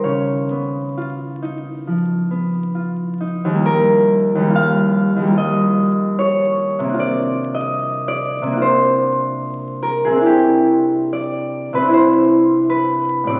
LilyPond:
<<
  \new Staff \with { instrumentName = "Harp" } { \time 4/4 \key c \phrygian \tempo 4 = 74 << { <des'' ees''>1 | bes'4 f''4 ees''4 des''4 | \tuplet 3/2 { d''4 ees''8~ ees''8 d''4 } c''4. bes'16 aes'16 | g'4 d''8. ces''16 c''4 ces''8. d''16 | } \\ { <des ees'>8 ces'8 f'8 ees'8 f8 ces'8 f'8 ees'8~ | ees'1~ | ees'1 | r1 | } >> }
  \new Staff \with { instrumentName = "Harp" } { \time 4/4 \key c \phrygian r1 | <ees, g bes f'>4 <ees, g bes f'>4 <ees, g bes f'>2 | <c bes d' f'>2 <c bes d' f'>2 | <c c' d' e'>2 <c c' d' e'>2 | }
>>